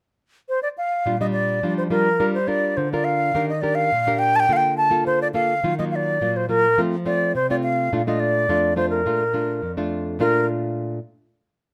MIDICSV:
0, 0, Header, 1, 3, 480
1, 0, Start_track
1, 0, Key_signature, -2, "major"
1, 0, Tempo, 570885
1, 894, Time_signature, 4, 2, 24, 8
1, 9870, End_track
2, 0, Start_track
2, 0, Title_t, "Flute"
2, 0, Program_c, 0, 73
2, 412, Note_on_c, 0, 72, 72
2, 521, Note_off_c, 0, 72, 0
2, 527, Note_on_c, 0, 74, 79
2, 577, Note_off_c, 0, 74, 0
2, 654, Note_on_c, 0, 77, 78
2, 989, Note_off_c, 0, 77, 0
2, 1015, Note_on_c, 0, 75, 73
2, 1066, Note_off_c, 0, 75, 0
2, 1117, Note_on_c, 0, 74, 78
2, 1460, Note_off_c, 0, 74, 0
2, 1494, Note_on_c, 0, 72, 73
2, 1545, Note_off_c, 0, 72, 0
2, 1602, Note_on_c, 0, 70, 89
2, 1943, Note_off_c, 0, 70, 0
2, 1970, Note_on_c, 0, 72, 81
2, 2082, Note_on_c, 0, 74, 89
2, 2095, Note_off_c, 0, 72, 0
2, 2329, Note_on_c, 0, 72, 75
2, 2341, Note_off_c, 0, 74, 0
2, 2453, Note_off_c, 0, 72, 0
2, 2459, Note_on_c, 0, 74, 78
2, 2560, Note_on_c, 0, 77, 89
2, 2572, Note_off_c, 0, 74, 0
2, 2929, Note_off_c, 0, 77, 0
2, 2936, Note_on_c, 0, 75, 81
2, 3039, Note_on_c, 0, 74, 86
2, 3052, Note_off_c, 0, 75, 0
2, 3154, Note_on_c, 0, 77, 99
2, 3166, Note_off_c, 0, 74, 0
2, 3521, Note_on_c, 0, 79, 111
2, 3533, Note_off_c, 0, 77, 0
2, 3664, Note_on_c, 0, 81, 102
2, 3672, Note_off_c, 0, 79, 0
2, 3697, Note_on_c, 0, 79, 111
2, 3705, Note_off_c, 0, 81, 0
2, 3807, Note_on_c, 0, 77, 102
2, 3815, Note_off_c, 0, 79, 0
2, 3840, Note_on_c, 0, 79, 111
2, 3848, Note_off_c, 0, 77, 0
2, 4008, Note_off_c, 0, 79, 0
2, 4013, Note_on_c, 0, 81, 97
2, 4239, Note_off_c, 0, 81, 0
2, 4257, Note_on_c, 0, 72, 80
2, 4370, Note_off_c, 0, 72, 0
2, 4388, Note_on_c, 0, 74, 90
2, 4439, Note_off_c, 0, 74, 0
2, 4489, Note_on_c, 0, 77, 89
2, 4829, Note_off_c, 0, 77, 0
2, 4864, Note_on_c, 0, 75, 81
2, 4915, Note_off_c, 0, 75, 0
2, 4971, Note_on_c, 0, 77, 82
2, 5007, Note_on_c, 0, 74, 89
2, 5016, Note_off_c, 0, 77, 0
2, 5351, Note_on_c, 0, 72, 79
2, 5364, Note_off_c, 0, 74, 0
2, 5450, Note_off_c, 0, 72, 0
2, 5455, Note_on_c, 0, 70, 99
2, 5719, Note_off_c, 0, 70, 0
2, 5935, Note_on_c, 0, 74, 86
2, 6160, Note_off_c, 0, 74, 0
2, 6184, Note_on_c, 0, 72, 81
2, 6293, Note_off_c, 0, 72, 0
2, 6307, Note_on_c, 0, 74, 81
2, 6358, Note_off_c, 0, 74, 0
2, 6415, Note_on_c, 0, 77, 86
2, 6751, Note_off_c, 0, 77, 0
2, 6784, Note_on_c, 0, 75, 76
2, 6893, Note_on_c, 0, 74, 89
2, 6905, Note_off_c, 0, 75, 0
2, 7367, Note_off_c, 0, 74, 0
2, 7372, Note_on_c, 0, 72, 74
2, 7477, Note_off_c, 0, 72, 0
2, 7482, Note_on_c, 0, 70, 74
2, 8173, Note_off_c, 0, 70, 0
2, 8575, Note_on_c, 0, 70, 88
2, 8797, Note_off_c, 0, 70, 0
2, 9870, End_track
3, 0, Start_track
3, 0, Title_t, "Nylon-string guitar"
3, 0, Program_c, 1, 24
3, 889, Note_on_c, 1, 46, 71
3, 890, Note_on_c, 1, 55, 60
3, 895, Note_on_c, 1, 62, 51
3, 897, Note_on_c, 1, 65, 65
3, 964, Note_off_c, 1, 55, 0
3, 965, Note_off_c, 1, 62, 0
3, 968, Note_off_c, 1, 65, 0
3, 1015, Note_on_c, 1, 55, 59
3, 1019, Note_on_c, 1, 62, 52
3, 1022, Note_on_c, 1, 65, 67
3, 1337, Note_off_c, 1, 55, 0
3, 1338, Note_off_c, 1, 62, 0
3, 1340, Note_off_c, 1, 65, 0
3, 1349, Note_off_c, 1, 46, 0
3, 1371, Note_on_c, 1, 53, 67
3, 1372, Note_on_c, 1, 55, 53
3, 1375, Note_on_c, 1, 62, 52
3, 1380, Note_on_c, 1, 65, 62
3, 1574, Note_off_c, 1, 55, 0
3, 1577, Note_off_c, 1, 62, 0
3, 1578, Note_off_c, 1, 65, 0
3, 1601, Note_on_c, 1, 55, 58
3, 1604, Note_on_c, 1, 62, 52
3, 1608, Note_on_c, 1, 65, 56
3, 1750, Note_off_c, 1, 55, 0
3, 1750, Note_off_c, 1, 62, 0
3, 1753, Note_off_c, 1, 65, 0
3, 1830, Note_off_c, 1, 53, 0
3, 1848, Note_on_c, 1, 62, 49
3, 1849, Note_on_c, 1, 55, 67
3, 1852, Note_on_c, 1, 65, 56
3, 1856, Note_on_c, 1, 70, 61
3, 1992, Note_off_c, 1, 62, 0
3, 1995, Note_off_c, 1, 65, 0
3, 1997, Note_off_c, 1, 70, 0
3, 2082, Note_on_c, 1, 62, 53
3, 2087, Note_on_c, 1, 65, 45
3, 2090, Note_on_c, 1, 70, 54
3, 2309, Note_off_c, 1, 55, 0
3, 2333, Note_on_c, 1, 50, 68
3, 2411, Note_off_c, 1, 62, 0
3, 2414, Note_off_c, 1, 65, 0
3, 2414, Note_off_c, 1, 70, 0
3, 2461, Note_on_c, 1, 62, 55
3, 2466, Note_on_c, 1, 65, 56
3, 2469, Note_on_c, 1, 70, 60
3, 2791, Note_off_c, 1, 50, 0
3, 2800, Note_off_c, 1, 62, 0
3, 2802, Note_off_c, 1, 65, 0
3, 2804, Note_off_c, 1, 70, 0
3, 2813, Note_on_c, 1, 51, 69
3, 2816, Note_on_c, 1, 62, 57
3, 2816, Note_on_c, 1, 67, 53
3, 2824, Note_on_c, 1, 70, 58
3, 2957, Note_off_c, 1, 62, 0
3, 2959, Note_off_c, 1, 67, 0
3, 2960, Note_off_c, 1, 70, 0
3, 3048, Note_on_c, 1, 62, 46
3, 3052, Note_on_c, 1, 67, 44
3, 3056, Note_on_c, 1, 70, 52
3, 3272, Note_off_c, 1, 51, 0
3, 3278, Note_off_c, 1, 62, 0
3, 3280, Note_off_c, 1, 67, 0
3, 3282, Note_off_c, 1, 70, 0
3, 3296, Note_on_c, 1, 46, 72
3, 3423, Note_on_c, 1, 62, 58
3, 3427, Note_on_c, 1, 67, 61
3, 3430, Note_on_c, 1, 70, 61
3, 3743, Note_off_c, 1, 62, 0
3, 3744, Note_off_c, 1, 67, 0
3, 3746, Note_off_c, 1, 70, 0
3, 3754, Note_off_c, 1, 46, 0
3, 3776, Note_on_c, 1, 50, 68
3, 3776, Note_on_c, 1, 58, 61
3, 3779, Note_on_c, 1, 65, 59
3, 3783, Note_on_c, 1, 69, 60
3, 4099, Note_off_c, 1, 58, 0
3, 4101, Note_off_c, 1, 65, 0
3, 4102, Note_off_c, 1, 69, 0
3, 4125, Note_on_c, 1, 58, 69
3, 4129, Note_on_c, 1, 65, 56
3, 4132, Note_on_c, 1, 69, 66
3, 4234, Note_off_c, 1, 50, 0
3, 4262, Note_on_c, 1, 50, 62
3, 4454, Note_off_c, 1, 58, 0
3, 4455, Note_off_c, 1, 65, 0
3, 4458, Note_off_c, 1, 69, 0
3, 4492, Note_on_c, 1, 58, 57
3, 4497, Note_on_c, 1, 65, 57
3, 4499, Note_on_c, 1, 69, 59
3, 4650, Note_off_c, 1, 58, 0
3, 4653, Note_off_c, 1, 65, 0
3, 4653, Note_off_c, 1, 69, 0
3, 4717, Note_off_c, 1, 50, 0
3, 4739, Note_on_c, 1, 51, 73
3, 4741, Note_on_c, 1, 54, 59
3, 4746, Note_on_c, 1, 58, 59
3, 4746, Note_on_c, 1, 65, 62
3, 4812, Note_off_c, 1, 54, 0
3, 4813, Note_off_c, 1, 58, 0
3, 4815, Note_off_c, 1, 65, 0
3, 4867, Note_on_c, 1, 54, 56
3, 4872, Note_on_c, 1, 58, 64
3, 4874, Note_on_c, 1, 65, 69
3, 5185, Note_off_c, 1, 54, 0
3, 5187, Note_off_c, 1, 58, 0
3, 5189, Note_off_c, 1, 65, 0
3, 5196, Note_off_c, 1, 51, 0
3, 5224, Note_on_c, 1, 46, 76
3, 5225, Note_on_c, 1, 54, 57
3, 5230, Note_on_c, 1, 65, 61
3, 5232, Note_on_c, 1, 58, 53
3, 5423, Note_off_c, 1, 54, 0
3, 5425, Note_off_c, 1, 58, 0
3, 5426, Note_off_c, 1, 65, 0
3, 5454, Note_on_c, 1, 54, 60
3, 5460, Note_on_c, 1, 58, 57
3, 5461, Note_on_c, 1, 65, 62
3, 5599, Note_off_c, 1, 54, 0
3, 5600, Note_off_c, 1, 58, 0
3, 5601, Note_off_c, 1, 65, 0
3, 5678, Note_off_c, 1, 46, 0
3, 5700, Note_on_c, 1, 53, 74
3, 5702, Note_on_c, 1, 57, 62
3, 5704, Note_on_c, 1, 60, 49
3, 5708, Note_on_c, 1, 65, 62
3, 5841, Note_off_c, 1, 57, 0
3, 5843, Note_off_c, 1, 60, 0
3, 5845, Note_off_c, 1, 65, 0
3, 5932, Note_on_c, 1, 57, 51
3, 5935, Note_on_c, 1, 60, 53
3, 5940, Note_on_c, 1, 65, 64
3, 6156, Note_off_c, 1, 53, 0
3, 6161, Note_off_c, 1, 57, 0
3, 6163, Note_off_c, 1, 60, 0
3, 6164, Note_off_c, 1, 65, 0
3, 6178, Note_on_c, 1, 48, 62
3, 6307, Note_on_c, 1, 57, 57
3, 6310, Note_on_c, 1, 60, 52
3, 6314, Note_on_c, 1, 65, 58
3, 6634, Note_off_c, 1, 48, 0
3, 6643, Note_off_c, 1, 57, 0
3, 6645, Note_off_c, 1, 60, 0
3, 6646, Note_off_c, 1, 65, 0
3, 6664, Note_on_c, 1, 46, 67
3, 6666, Note_on_c, 1, 57, 52
3, 6667, Note_on_c, 1, 62, 57
3, 6674, Note_on_c, 1, 65, 62
3, 6734, Note_off_c, 1, 57, 0
3, 6735, Note_off_c, 1, 62, 0
3, 6737, Note_off_c, 1, 65, 0
3, 6787, Note_on_c, 1, 57, 57
3, 6792, Note_on_c, 1, 62, 60
3, 6795, Note_on_c, 1, 65, 65
3, 7104, Note_off_c, 1, 57, 0
3, 7106, Note_off_c, 1, 62, 0
3, 7108, Note_off_c, 1, 65, 0
3, 7117, Note_off_c, 1, 46, 0
3, 7138, Note_on_c, 1, 41, 69
3, 7141, Note_on_c, 1, 57, 59
3, 7141, Note_on_c, 1, 62, 60
3, 7148, Note_on_c, 1, 65, 63
3, 7340, Note_off_c, 1, 57, 0
3, 7341, Note_off_c, 1, 62, 0
3, 7343, Note_off_c, 1, 65, 0
3, 7368, Note_on_c, 1, 57, 51
3, 7372, Note_on_c, 1, 62, 56
3, 7376, Note_on_c, 1, 65, 59
3, 7573, Note_off_c, 1, 57, 0
3, 7576, Note_off_c, 1, 62, 0
3, 7577, Note_off_c, 1, 65, 0
3, 7593, Note_off_c, 1, 41, 0
3, 7616, Note_on_c, 1, 46, 74
3, 7617, Note_on_c, 1, 57, 52
3, 7622, Note_on_c, 1, 62, 54
3, 7624, Note_on_c, 1, 65, 63
3, 7757, Note_off_c, 1, 57, 0
3, 7759, Note_off_c, 1, 62, 0
3, 7761, Note_off_c, 1, 65, 0
3, 7848, Note_on_c, 1, 57, 54
3, 7851, Note_on_c, 1, 62, 48
3, 7857, Note_on_c, 1, 65, 55
3, 8072, Note_off_c, 1, 46, 0
3, 8076, Note_off_c, 1, 57, 0
3, 8079, Note_off_c, 1, 62, 0
3, 8080, Note_off_c, 1, 65, 0
3, 8092, Note_on_c, 1, 41, 55
3, 8217, Note_on_c, 1, 57, 61
3, 8220, Note_on_c, 1, 62, 58
3, 8224, Note_on_c, 1, 65, 62
3, 8548, Note_off_c, 1, 41, 0
3, 8556, Note_off_c, 1, 57, 0
3, 8556, Note_off_c, 1, 62, 0
3, 8559, Note_off_c, 1, 65, 0
3, 8568, Note_on_c, 1, 46, 56
3, 8575, Note_on_c, 1, 57, 64
3, 8580, Note_on_c, 1, 62, 71
3, 8585, Note_on_c, 1, 65, 68
3, 9239, Note_off_c, 1, 46, 0
3, 9239, Note_off_c, 1, 57, 0
3, 9239, Note_off_c, 1, 62, 0
3, 9239, Note_off_c, 1, 65, 0
3, 9870, End_track
0, 0, End_of_file